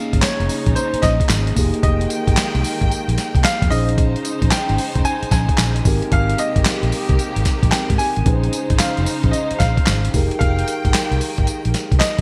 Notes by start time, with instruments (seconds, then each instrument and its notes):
Already playing: string section C#3 G#3 C#4 D#4, tine electric piano A#3 C#4 D#4 G#4, grand piano F5
0.13 fingered electric bass G#1, kick, closed hi-hat
0.22 grand piano C#5, snare, clap, closed hi-hat, tambourine
0.40 fingered electric bass F1, closed hi-hat
0.49 open hi-hat, tambourine
0.66 fingered electric bass A#1, kick, closed hi-hat
0.75 grand piano C5, closed hi-hat, tambourine
0.93 muted fingered electric bass stroke, closed hi-hat
1.02 fingered electric bass A#1, grand piano D#5, kick, snare, closed hi-hat, tambourine
1.20 kick, closed hi-hat
1.29 fingered electric bass G#1, snare, clap, closed hi-hat, tambourine
1.47 closed hi-hat
1.56 fingered electric bass F1, string section D#3 A#3 G5, tine electric piano A#3 D#4 G4 G#4, kick, open hi-hat, tambourine
1.74 closed hi-hat
1.83 fingered electric bass F1, grand piano D#5, kick, closed hi-hat
2.01 closed hi-hat
2.10 closed hi-hat, tambourine
2.27 fingered electric bass G#1, kick, closed hi-hat
2.37 snare, clap, closed hi-hat, tambourine
2.55 fingered electric bass C2, closed hi-hat
2.64 open hi-hat, tambourine
2.81 fingered electric bass G#1, kick, closed hi-hat
2.91 closed hi-hat, tambourine
3.08 fingered electric bass A#1, closed hi-hat
3.18 snare, closed hi-hat, tambourine
3.35 fingered electric bass C2, kick, closed hi-hat
3.44 grand piano F5, snare, clap, closed hi-hat, tambourine
3.62 fingered electric bass F2, kick, closed hi-hat
3.70 fingered electric bass A#1, string section C#3 G#3 D#4 C5, tine electric piano C#4 D#4 G#4 C5, grand piano D#5, open hi-hat, tambourine
3.89 closed hi-hat
3.98 kick, closed hi-hat
4.16 closed hi-hat
4.25 closed hi-hat, tambourine
4.42 fingered electric bass A#1, kick, closed hi-hat
4.51 grand piano G5, snare, clap, closed hi-hat, tambourine
4.69 fingered electric bass G#1, closed hi-hat
4.78 open hi-hat, tambourine
4.95 fingered electric bass F1, kick, closed hi-hat
5.05 grand piano G#5, closed hi-hat, tambourine
5.23 muted fingered electric bass stroke, closed hi-hat
5.31 fingered electric bass A#1, grand piano G#5, kick, snare, closed hi-hat, tambourine
5.49 kick, closed hi-hat
5.57 fingered electric bass A#1, snare, clap, closed hi-hat, tambourine
5.76 closed hi-hat
5.84 fingered electric bass G#1, string section C3 A#3 G4, tine electric piano C4 D#4 G4 A#4, kick, open hi-hat, tambourine
6.02 closed hi-hat
6.12 fingered electric bass G#1, grand piano F5, kick, closed hi-hat
6.30 closed hi-hat
6.38 grand piano D#5, closed hi-hat, tambourine
6.56 fingered electric bass G#1, kick, closed hi-hat
6.65 snare, clap, closed hi-hat, tambourine
6.83 fingered electric bass A#1, closed hi-hat
6.92 open hi-hat, tambourine
7.09 fingered electric bass C2, kick, closed hi-hat
7.19 closed hi-hat, tambourine
7.36 fingered electric bass G#1, closed hi-hat
7.45 kick, snare, closed hi-hat, tambourine
7.63 fingered electric bass A#1, kick, closed hi-hat
7.71 tine electric piano C4 D#4 G4 A#4, grand piano G5, snare, clap, closed hi-hat, tambourine
7.90 fingered electric bass G#2, kick, closed hi-hat
7.98 grand piano G#5, open hi-hat, tambourine
8.16 fingered electric bass A1, closed hi-hat
8.25 fingered electric bass A#1, string section C#3 D#4 C5, tine electric piano C#4 D#4 G#4 B4, kick, closed hi-hat
8.34 tine electric piano C5
8.44 closed hi-hat
8.53 closed hi-hat, tambourine
8.70 fingered electric bass G#1, kick, closed hi-hat
8.78 grand piano F5, snare, clap, closed hi-hat, tambourine
8.97 fingered electric bass F1, closed hi-hat
9.06 open hi-hat, tambourine
9.23 fingered electric bass A#1, kick, closed hi-hat
9.31 grand piano D#5, closed hi-hat, tambourine
9.51 muted fingered electric bass stroke, closed hi-hat
9.59 fingered electric bass A#1, grand piano F5, kick, snare, closed hi-hat, tambourine
9.77 kick, closed hi-hat
9.86 fingered electric bass G#1, snare, clap, closed hi-hat, tambourine
10.05 closed hi-hat
10.13 fingered electric bass F1, string section D#3 A#3 G5, tine electric piano D#4 G4 G#4 A#4, kick, open hi-hat, tambourine
10.31 closed hi-hat
10.39 fingered electric bass F1, grand piano F5, kick, closed hi-hat
10.59 closed hi-hat
10.68 closed hi-hat, tambourine
10.85 fingered electric bass G#1, kick, closed hi-hat
10.94 snare, clap, closed hi-hat, tambourine
11.11 fingered electric bass C2, closed hi-hat
11.21 open hi-hat, tambourine
11.38 fingered electric bass G#1, kick, closed hi-hat
11.47 closed hi-hat, tambourine
11.65 fingered electric bass A#1, closed hi-hat
11.74 snare, closed hi-hat, tambourine
11.92 fingered electric bass C2, kick, closed hi-hat
11.99 grand piano D#5, snare, clap, closed hi-hat, tambourine